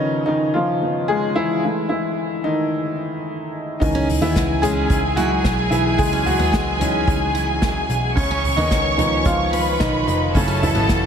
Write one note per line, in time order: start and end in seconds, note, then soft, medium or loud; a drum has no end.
0.00 1.65 C#3 medium
0.00 0.25 D#3 medium
0.00 0.23 F3 medium
0.00 0.23 B3 medium
0.00 1.65 C#4 loud
0.00 0.26 D#4 loud
0.26 0.53 D#3 medium
0.26 0.54 D#4 loud
0.54 0.80 F3 medium
0.54 1.10 F4 medium
0.82 1.06 F3 soft
0.82 1.06 B3 soft
0.82 1.06 D#4 medium
1.08 1.35 G#3 medium
1.08 1.36 G#4 loud
1.36 1.87 E3 medium
1.36 1.63 E4 loud
1.64 2.41 G#3 medium
1.64 2.41 A3 medium
1.64 1.88 E4 medium
1.89 2.41 E3 medium
1.89 2.40 E4 medium
2.44 3.50 D#3 medium
2.44 3.49 D#4 loud
3.80 4.19 C#2 loud
3.80 4.20 D#3 medium
3.80 4.22 E3 medium
3.80 5.95 C#4 medium
3.80 3.82 D#4 loud
3.80 5.96 D#4 medium
3.80 8.13 G#4 medium
3.80 8.13 G#5 loud
3.80 kick medium
3.80 open hi-hat medium
3.95 4.08 C#4 medium
4.09 floor tom medium
4.09 hi-hat pedal medium
4.09 open hi-hat medium
4.21 4.34 D#2 medium
4.21 4.61 E3 medium
4.21 4.35 B3 medium
4.21 4.60 E4 loud
4.35 4.86 C#2 loud
4.35 kick loud
4.35 snare loud
4.35 hi-hat pedal medium
4.35 open hi-hat medium
4.62 5.14 G#3 medium
4.62 5.01 C#4 medium
4.62 5.13 G#4 loud
4.62 floor tom medium
4.62 hi-hat pedal medium
4.62 open hi-hat medium
4.90 5.41 C#2 loud
4.90 kick loud
4.90 hi-hat pedal medium
4.90 open hi-hat medium
5.16 5.69 F#3 medium
5.16 5.30 E4 medium
5.16 5.73 F#4 loud
5.16 hi-hat pedal medium
5.16 open hi-hat medium
5.44 5.70 B1 loud
5.44 kick loud
5.44 snare loud
5.44 hi-hat pedal medium
5.44 open hi-hat medium
5.71 5.97 B1 medium
5.71 5.97 E3 medium
5.71 5.99 E4 medium
5.71 hi-hat pedal medium
5.71 open hi-hat medium
5.98 6.37 C#2 medium
5.98 6.25 G#3 medium
5.98 6.27 G#4 loud
5.98 kick loud
5.98 hi-hat pedal medium
5.98 open hi-hat medium
6.13 6.26 C#4 medium
6.26 6.52 F#3 medium
6.26 6.54 F#4 medium
6.26 floor tom medium
6.26 hi-hat pedal medium
6.26 open hi-hat medium
6.39 6.54 D#2 medium
6.39 6.52 B3 medium
6.53 7.04 C#2 loud
6.53 7.58 G#3 medium
6.53 7.58 G#4 medium
6.53 kick loud
6.53 snare loud
6.53 hi-hat pedal medium
6.53 open hi-hat medium
6.79 7.16 E3 medium
6.79 7.16 C#4 medium
6.79 7.19 C#4 medium
6.79 7.17 D#4 medium
6.79 floor tom medium
6.79 hi-hat pedal medium
6.79 open hi-hat medium
7.07 7.85 C#2 loud
7.07 kick loud
7.07 hi-hat pedal medium
7.07 open hi-hat medium
7.35 7.48 E4 medium
7.35 hi-hat pedal medium
7.35 open hi-hat medium
7.62 kick loud
7.62 snare loud
7.62 hi-hat pedal medium
7.62 open hi-hat medium
7.89 8.15 B1 medium
7.89 hi-hat pedal medium
7.89 open hi-hat medium
8.16 8.55 C#2 loud
8.16 8.55 C#3 medium
8.16 8.58 C#4 medium
8.16 9.51 C#5 medium
8.16 9.50 C#6 loud
8.16 kick loud
8.16 hi-hat pedal medium
8.16 open hi-hat medium
8.31 8.44 C#4 medium
8.44 floor tom medium
8.44 hi-hat pedal medium
8.44 open hi-hat medium
8.57 8.70 D#2 medium
8.57 8.96 D#3 medium
8.57 8.70 B3 medium
8.57 8.96 D#4 loud
8.70 9.22 C#2 loud
8.70 kick loud
8.70 snare loud
8.70 hi-hat pedal medium
8.70 open hi-hat medium
8.98 9.24 D#3 medium
8.98 9.25 F3 medium
8.98 9.76 B3 medium
8.98 9.37 C#4 medium
8.98 9.76 D#4 loud
8.98 floor tom medium
8.98 hi-hat pedal medium
8.98 open hi-hat medium
9.25 9.76 C#2 loud
9.25 9.77 F3 medium
9.25 9.82 F4 loud
9.25 kick loud
9.25 hi-hat pedal medium
9.25 open hi-hat loud
9.53 9.66 F4 medium
9.53 10.33 B4 medium
9.53 10.33 B5 medium
9.53 hi-hat pedal medium
9.53 open hi-hat medium
9.80 10.05 B1 loud
9.80 10.06 D#3 medium
9.80 10.06 D#4 loud
9.80 kick loud
9.80 snare loud
9.80 hi-hat pedal medium
9.80 open hi-hat medium
10.07 10.33 F1 medium
10.07 10.33 D#3 medium
10.07 10.33 D#4 medium
10.07 hi-hat pedal medium
10.07 open hi-hat medium
10.34 10.73 F#1 loud
10.34 10.61 C#3 medium
10.34 11.06 F#3 medium
10.34 11.06 A3 medium
10.34 10.60 C#4 loud
10.34 10.61 E4 medium
10.34 11.06 A4 medium
10.34 11.06 A5 medium
10.34 kick loud
10.34 hi-hat pedal medium
10.34 open hi-hat medium
10.48 10.61 C#4 medium
10.63 11.06 E3 medium
10.63 11.06 E4 medium
10.63 floor tom medium
10.63 hi-hat pedal medium
10.63 open hi-hat medium
10.75 10.88 G#1 medium
10.75 10.88 B3 medium
10.88 11.06 F#1 loud
10.88 kick loud
10.88 snare loud
10.88 hi-hat pedal medium
10.88 open hi-hat medium